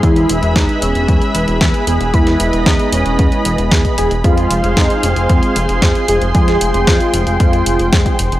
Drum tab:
HH |xxxxxxxxxxxxxxxx|xxxxxxxxxxxxxxxx|xxxxxxxxxxxxxxxx|xxxxxxxxxxxxxxxx|
SD |----o-------o---|-o--o-------o---|----o-------o---|-o--o-------o---|
BD |o---o---o---o---|o---o---o---oo--|o---o---o---o---|o---o---o---oo--|